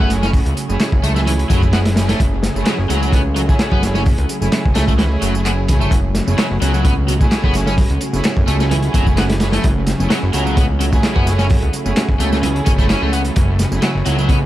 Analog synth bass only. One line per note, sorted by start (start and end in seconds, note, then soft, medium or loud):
0.00 0.40 F#1 medium
0.46 0.54 C#2 medium
0.69 0.77 F#1 medium
0.92 1.00 F#1 medium
1.03 1.45 C#2 loud
1.50 2.14 F#1 medium
2.20 2.50 F#1 loud
2.55 2.63 F#1 medium
2.79 2.86 F#1 loud
2.90 3.54 C#2 medium
3.72 4.12 F#1 medium
4.18 4.26 C#2 medium
4.42 4.49 F#1 medium
4.65 4.73 F#1 medium
4.75 5.17 C#2 medium
5.22 5.71 F#1 medium
5.69 5.82 C#2 medium
5.81 5.89 F#1 medium
5.91 6.21 F#1 loud
6.27 6.35 F#1 medium
6.51 6.58 F#1 medium
6.62 7.26 C#2 loud
7.44 7.84 F#1 medium
7.90 7.98 C#2 medium
8.13 8.21 F#1 medium
8.37 8.44 F#1 medium
8.48 8.89 C#2 loud
8.94 9.59 F#1 medium
9.64 9.94 F#1 loud
10.00 10.07 F#1 medium
10.23 10.30 F#1 medium
10.34 10.98 C#2 medium
11.16 11.56 F#1 medium
11.63 11.70 C#2 medium
11.86 11.93 F#1 medium
12.08 12.16 F#1 medium
12.20 12.61 C#2 loud
12.67 12.96 F#1 loud
13.02 13.31 C#2 medium
13.37 13.66 F#1 loud
13.72 13.79 F#1 medium
13.95 14.03 F#1 medium
14.06 14.46 C#2 medium